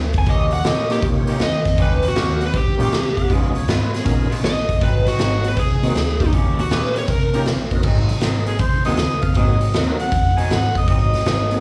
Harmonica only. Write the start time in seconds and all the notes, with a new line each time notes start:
3.19 F#5
3.31 D#5
3.56 C#5
3.68 B4
3.93 G#4
4.06 G#4
8.47 G#4
8.60 C5
8.85 D#5
9.23 F5
9.37 D#5
10.00 F#5
10.39 G#5
10.52 F#5
10.77 D#5
10.88 D#5